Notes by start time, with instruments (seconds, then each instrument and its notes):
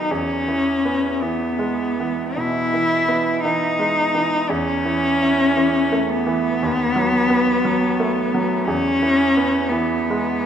Already playing: grand piano D#3 F#3 B3, cello D#4
0.11 grand piano E2, cello C#4
0.48 grand piano E3
0.85 grand piano B3
1.22 grand piano E3, cello B3
1.59 grand piano G#3
2.00 grand piano E3
2.37 grand piano B2, cello E4
2.74 grand piano E3
3.08 grand piano B3
3.44 grand piano E3, cello D#4
3.79 grand piano G#3
4.15 grand piano E3
4.49 grand piano E2, cello C#4
4.85 grand piano E3
5.22 grand piano E4
5.57 grand piano E3
5.92 grand piano A3
6.09 cello B3
6.27 grand piano E3
6.63 grand piano D#2
6.96 grand piano F#3
7.30 grand piano B3
7.65 grand piano F#3
8.00 grand piano A3
8.34 grand piano F#3
8.65 grand piano E2, cello C#4
9.02 grand piano E3
9.37 grand piano B3
9.69 grand piano E3, cello B3
10.10 grand piano G#3